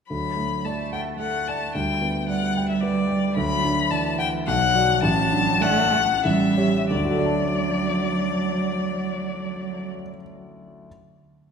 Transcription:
0.09 D2 F#3 B5
0.37 A3
0.65 A3 D5 A5
0.93 F#5 G5
1.19 A3 A4 F#5
1.48 D5 A5
1.75 D2 G3 G5
2.02 B3
2.29 G3 D5 F#5
2.57 G5
2.69 E5
2.81 B4 D5
3.10 D5
3.36 D2 F#3 B5
3.64 D4
3.91 E3 D5 A5
4.18 F#5 G5
4.45 B1 F#3 F#5
4.75 F#4 D5
5.02 A1 F#3 A5
5.32 D4
5.61 A3 D5 F#5
5.91 A3 F#5
6.23 A1 G3 E5
6.57 G4 C#5
6.90 D2 F#3 D5
6.97 D3
7.04 F#4
7.11 A4
7.18 D5
7.25 A5

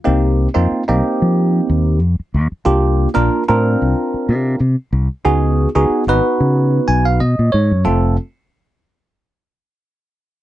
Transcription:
0.04 C2 A#3 C4 D#4 G4
0.54 F2 A#3 C4 D#4 F4
0.71 muted fingered electric bass stroke
0.88 C2 A#3 C4 D#4 G4
1.22 F3
1.70 D#2
2.01 F2
2.20 muted fingered electric bass stroke
2.34 D#2
2.52 muted fingered electric bass stroke
2.65 C2 A#3 D4 F4 G4
3.14 A#1 A#3 D4 F4 A#4
3.48 A2 C4 D4 F4 A#4
3.82 C2
4.14 muted fingered electric bass stroke
4.29 C3
4.60 C3
4.93 C2
5.25 C#2 B3 D#4 F#4 G#4
5.75 C#2 B3 D#4 F#4 G#4
5.90 muted fingered electric bass stroke
6.07 G#1 B3 D#4 F#4 B4
6.40 C#3
6.88 B1 G#5
7.05 F5
7.20 B2 D#5
7.39 A#2
7.52 G#2 C#5
7.71 F#2
7.85 F1 A3 C4 F4 A4

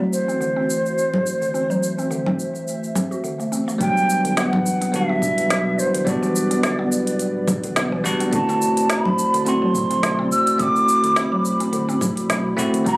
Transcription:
Already playing: E3 A3 C4 E4 F#4 C5 D5
0.00 F#3
0.12 C5, cabasa
0.28 C4, cabasa
0.41 D3, cabasa
0.56 C4
0.70 cabasa
0.86 cabasa
0.98 cabasa
1.14 low conga
1.26 cabasa
1.42 D3, cabasa
1.54 C4 E5, cabasa
1.70 F#3, cabasa
1.83 cabasa
1.98 C4, cabasa
2.11 D3, cabasa
2.26 C4, low conga
2.39 cabasa
2.55 cabasa
2.68 cabasa
2.84 cabasa
2.95 C4, low conga, cabasa
3.11 F#4, cabasa
3.24 D3, cabasa
3.40 A3, cabasa
3.52 C4, cabasa
3.68 A3, cabasa
3.78 F#3 G3 B3 D4 E4 B4 D5 G5, kick, closed hi-hat, cabasa
3.97 cabasa
4.09 E1, cabasa
4.25 D3, closed hi-hat, cabasa
4.37 B3 F#5, snare, closed hi-hat, cabasa
4.53 E1 E3, low conga
4.66 cabasa
4.81 B3, closed hi-hat, cabasa
4.92 D1 D3 G3 B3 D4 F#4 E5, closed hi-hat, cabasa
5.09 B3
5.22 kick, cabasa
5.38 B1, closed hi-hat, cabasa
5.50 snare, closed hi-hat, cabasa
5.79 E1 C5, cabasa
5.94 D3, closed hi-hat, cabasa
6.05 G3 B3 D4 F#4 D5, kick, closed hi-hat, cabasa
6.22 E3, cabasa
6.35 E1, cabasa
6.51 B3, closed hi-hat, cabasa
6.63 D3, snare, closed hi-hat, cabasa
6.79 E1 B3
6.92 cabasa
7.07 closed hi-hat, cabasa
7.19 D1, closed hi-hat, cabasa
7.48 kick, low conga, cabasa
7.64 B1 D3, closed hi-hat, cabasa
7.76 B3, snare, closed hi-hat, cabasa
7.92 E3
8.04 E1 G3 B3 D4 F#4, kick, cabasa
8.20 B3, closed hi-hat, cabasa
8.31 D3 A3 C4 E4 F#4 C5 A5, kick, closed hi-hat, cabasa
8.35 F#4
8.49 C4, cabasa
8.61 E1, cabasa
8.77 closed hi-hat, cabasa
8.90 B5, snare, closed hi-hat, cabasa
9.05 E1, low conga
9.19 cabasa
9.34 D3, closed hi-hat, cabasa
9.45 D1 A3 C4 E4 F#4 C6, closed hi-hat, cabasa
9.62 F#3
9.75 kick, cabasa
9.91 B1 C4, closed hi-hat, cabasa
10.03 D3, snare, closed hi-hat, cabasa
10.19 C4
10.32 E1 E6, cabasa
10.47 closed hi-hat, cabasa
10.58 A3 C4 E4 F#4 B5 D6, kick, closed hi-hat, cabasa
10.76 cabasa
10.88 E1, cabasa
11.04 D3, closed hi-hat, cabasa
11.16 C4, snare, closed hi-hat, cabasa
11.32 E1 F#3
11.45 cabasa
11.60 C4, closed hi-hat, cabasa
11.73 D1 D3, closed hi-hat, cabasa
11.89 C4, cabasa
12.01 kick, low conga, cabasa
12.17 B1, closed hi-hat, cabasa
12.30 snare, closed hi-hat, cabasa
12.57 E1 A3 C4 E4 F#4, kick, cabasa
12.73 D3, closed hi-hat, cabasa
12.84 E3 G3 B3 D4 D5 E5 A#5 B5, kick, closed hi-hat, cabasa
12.88 F#4

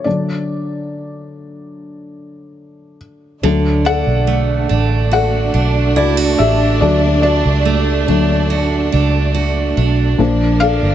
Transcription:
0.04 D3 F#3 D4 D5
3.43 D2 D3 F#3 A3 D4
3.85 D4 A4 F#5
4.07 B1
4.27 A3
4.69 A1 D4
5.11 F#4 A4 F#5
5.54 B1 D4
5.96 C#2 E4 F#4 D5
6.17 F#4
6.39 A1 D4 G4 E5
6.81 D2 F#3 A3 D4 F#4 D5
7.22 D4 F#4 D5
7.45 C#2
7.65 A3
8.07 D2 F#3 A3 D4
8.50 F#4
8.92 C#2 D4
9.35 F#4
9.77 B1 D4
10.18 A#1 F3 A#3 D4
10.60 D4 A4 F5
10.82 G1

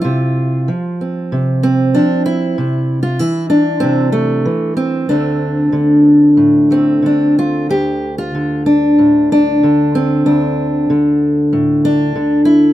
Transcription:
Already playing: E4
0.01 C3 F4
0.68 F3
1.01 C4
1.32 C3
1.63 C4
1.95 F3 D4
2.26 E4
2.58 C3
3.03 F4
3.19 E3 E4
3.50 D4
3.80 C3 C4
4.12 A3
4.45 E3
4.77 C4
5.09 D2 D3 A3 C4 D4
5.72 D3
6.37 A2
6.71 A3 C4
7.02 D3 D4
7.39 F4
7.69 D2 G4
8.18 F4
8.35 D3
8.66 D4
8.99 A2
9.32 D4
9.63 D3
9.95 C4
10.26 D2 D4
10.90 D3
11.53 A2
11.85 D4
12.16 D3
12.45 E4

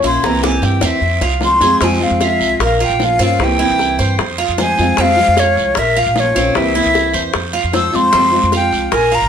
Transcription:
0.03 A#1 A#3 C#4 E4 F4 C6, high bongo, short guiro
0.22 C2 C3 E3 A#3 C4 E4 A#5, high bongo, long guiro
0.43 E3 A#3 C4 E4 G4 G#5, high bongo
0.62 G2 G5, low bongo, short guiro
0.81 E2 C4, low bongo, short guiro
0.85 E5
1.01 F2, muted nylon-string guitar stroke, long guiro
1.21 C2 F4, low bongo
1.41 F3 G#3 C4 F4 C6, low bongo, short guiro
1.60 F2 F3 G#3 C4 F4 G#4, low bongo, short guiro
1.81 F2 C3 F3 G#3 C4 F4 G#5, high bongo, long guiro
2.00 F3 G#3 C4 F4 F5
2.11 F2
2.21 F4 E5, high bongo, short guiro
2.40 C2, high bongo, short guiro
2.59 A#1 A#4, muted nylon-string guitar stroke, high bongo, long guiro
2.64 F5
2.80 F4, high bongo
2.84 G5
2.90 A#1
3.00 F3 A#3 C#4 F4, high bongo, low bongo, short guiro
3.04 F5
3.19 G2 A#3 C4 C#4 F4, high bongo, short guiro
3.25 F5
3.39 C2 C3 E3 A#3 C4 E4, high bongo, long guiro
3.44 G5
3.59 E3 A#3 C4 E4
3.69 C2
3.79 high bongo, short guiro
3.99 G2 C5, high bongo, short guiro
4.19 F2, muted nylon-string guitar stroke, high bongo, long guiro
4.38 F4, high bongo
4.49 F2
4.58 F3 G#3 C4 F4 C5 G#5, high bongo, low bongo, short guiro
4.78 F2 F3 G#3 C4 F4, high bongo, short guiro
4.97 F2 C3 F3 G#3 C4 F4, high bongo, long guiro
5.01 F5
5.17 F3 G#3 F4
5.28 F2
5.37 F4 C#5, high bongo, short guiro
5.56 C2, high bongo, short guiro
5.75 A#1 A#4 E5, muted nylon-string guitar stroke, high bongo, long guiro
5.95 F4 F5, high bongo
6.06 A#1
6.16 F3 A#3 C#4 F4 C#5, high bongo, low bongo, short guiro
6.35 A#1 A#3 C4 C#4 F4, high bongo, short guiro
6.55 C2 C3 E3 A#3 C4 E4 E5, high bongo, long guiro
6.75 E3 A#3 C4 E4
6.85 C2
6.94 high bongo, short guiro
7.14 E2 C5, high bongo, short guiro
7.33 F2, muted nylon-string guitar stroke, high bongo, long guiro
7.53 F4, high bongo
7.64 F2
7.72 F3 G#3 C4 F4 C5 E6, high bongo, low bongo, short guiro
7.92 F2 F3 G#3 C4 F4 C6, high bongo, short guiro
8.12 F2 C3 F3 G#3 C4 F4, high bongo, long guiro
8.32 F3 G#3 C4 F4
8.43 F2
8.52 F4 G5, high bongo, short guiro
8.72 C2, high bongo, short guiro
8.92 A#1 A#4 G#5, muted nylon-string guitar stroke, high bongo, long guiro
9.12 F4 A#5, high bongo
9.22 A#1

